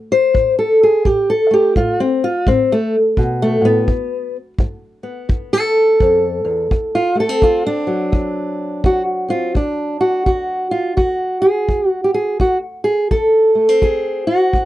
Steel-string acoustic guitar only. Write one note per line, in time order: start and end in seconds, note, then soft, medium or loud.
0.00 0.29 A2 medium
0.12 0.58 C5 loud
0.34 1.00 A2 medium
0.59 0.82 A4 loud
0.83 1.06 G#4 medium
1.06 1.71 A2 medium
1.06 1.29 G4 loud
1.30 1.53 A4 loud
1.51 2.00 A3 medium
1.51 1.76 G4 loud
1.77 2.42 A2 medium
1.77 2.00 F4 loud
2.00 2.23 C4 loud
2.24 2.47 F4 loud
2.47 3.12 A2 medium
2.47 2.71 C4 medium
2.72 2.95 A3 loud
3.18 3.61 B2 medium
3.42 3.65 A3 loud
3.61 3.88 A2 medium
3.61 4.36 B3 loud
3.88 4.53 G2 medium
4.60 5.25 G2 medium
5.03 6.68 B3 medium
5.29 5.95 G2 medium
5.53 6.95 A4 loud
6.01 6.44 F2 medium
6.45 6.71 E2 medium
6.71 7.37 D2 medium
6.95 7.19 F4 loud
7.15 7.29 A3 medium
7.20 7.43 A4 loud
7.29 9.27 C4 soft
7.43 8.08 D2 medium
7.43 7.66 F4 loud
7.67 8.84 D4 loud
7.87 12.40 F#3 medium
8.12 8.78 D2 medium
8.84 9.50 D2 medium
8.84 9.02 F#4 medium
9.28 9.52 C4 medium
9.28 9.56 F4 loud
9.54 10.20 D2 medium
9.54 10.00 D4 medium
10.01 10.25 F#4 medium
10.27 10.92 D2 medium
10.27 10.70 F#4 medium
10.71 10.96 F4 medium
10.97 11.63 D2 medium
10.97 11.41 F#4 medium
11.42 11.88 G#4 loud
11.69 12.34 D2 medium
11.88 12.04 F#4 loud
12.04 12.13 G4 medium
12.14 12.40 G#4 loud
12.40 13.05 D2 medium
12.40 12.57 F#4 medium
12.84 13.11 G#4 loud
13.11 13.77 D2 medium
13.11 13.82 A4 loud
13.55 13.69 A3 medium
13.69 14.65 C4 soft
13.82 14.48 D2 medium
13.82 14.26 G#4 loud
14.27 14.65 F#4 loud
14.54 14.65 D2 medium